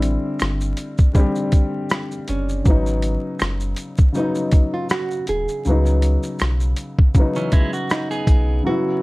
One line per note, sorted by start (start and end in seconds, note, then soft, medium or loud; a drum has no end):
0.00 0.17 A1 loud
0.00 0.63 D3 medium
0.00 0.64 G3 medium
0.00 0.65 C4 medium
0.00 0.66 E4 medium
0.00 closed hi-hat medium
0.00 shaker soft
0.39 0.74 G1 medium
0.39 finger snap medium
0.39 cross-stick loud
0.39 shaker medium
0.61 shaker soft
0.77 closed hi-hat medium
0.77 shaker soft
0.98 kick medium
0.98 shaker soft
1.13 2.13 D3 medium
1.13 2.13 G3 medium
1.13 kick medium
1.13 shaker medium
1.17 2.15 C4 medium
1.17 2.16 G4 medium
1.35 shaker soft
1.52 kick loud
1.52 closed hi-hat medium
1.52 shaker soft
1.90 finger snap medium
1.90 cross-stick loud
1.90 shaker medium
2.11 shaker soft
2.28 2.61 F#1 medium
2.28 4.16 C#4 medium
2.28 closed hi-hat medium
2.28 shaker soft
2.49 shaker soft
2.64 3.17 G#1 loud
2.64 3.63 C#3 medium
2.64 3.64 F#3 medium
2.64 kick loud
2.64 shaker medium
2.68 3.65 B3 medium
2.68 3.66 D#4 medium
2.86 shaker medium
3.02 closed hi-hat medium
3.02 shaker soft
3.39 3.74 F#1 medium
3.39 finger snap medium
3.39 cross-stick loud
3.39 shaker medium
3.60 shaker medium
3.76 closed hi-hat medium
3.76 shaker soft
3.97 kick medium
3.97 shaker soft
4.12 5.12 C#3 medium
4.12 5.13 F#3 medium
4.12 4.76 D#4 medium
4.12 shaker medium
4.17 5.14 B3 medium
4.17 5.15 D#4 medium
4.35 shaker soft
4.51 kick medium
4.51 closed hi-hat medium
4.51 shaker soft
4.74 4.91 F4 medium
4.89 5.29 F#4 medium
4.89 finger snap medium
4.89 cross-stick loud
4.89 shaker medium
5.11 shaker soft
5.27 5.46 D#1 medium
5.27 6.74 G#4 medium
5.27 closed hi-hat medium
5.27 shaker soft
5.48 shaker soft
5.65 6.17 C#2 loud
5.65 6.63 C#3 medium
5.65 6.64 F#3 medium
5.65 shaker medium
5.69 6.65 B3 medium
5.69 6.66 D#4 medium
5.86 shaker soft
6.02 closed hi-hat medium
6.02 shaker soft
6.23 shaker soft
6.39 6.74 B1 medium
6.39 finger snap medium
6.39 cross-stick medium
6.39 shaker medium
6.60 shaker medium
6.77 closed hi-hat medium
6.77 shaker soft
6.99 kick loud
7.14 8.13 C#3 medium
7.14 8.14 F#3 medium
7.14 kick medium
7.14 shaker medium
7.19 8.15 B3 medium
7.19 8.16 D#4 medium
7.35 7.52 E3 medium
7.35 7.52 C#4 medium
7.35 shaker soft
7.52 7.73 G#3 medium
7.52 7.72 E4 medium
7.52 kick medium
7.52 closed hi-hat medium
7.52 shaker soft
7.73 8.09 F#4 medium
7.73 shaker soft
7.89 8.68 D#4 medium
7.89 finger snap medium
7.89 cross-stick medium
7.89 shaker medium
8.11 8.63 B3 medium
8.11 8.62 G#4 medium
8.11 shaker soft
8.27 8.61 B1 medium
8.27 kick medium
8.27 closed hi-hat medium
8.27 shaker soft
8.63 9.02 C#3 medium
8.63 9.02 F#3 medium
8.63 9.02 F#4 loud
8.67 9.02 B3 medium
8.67 9.02 E4 medium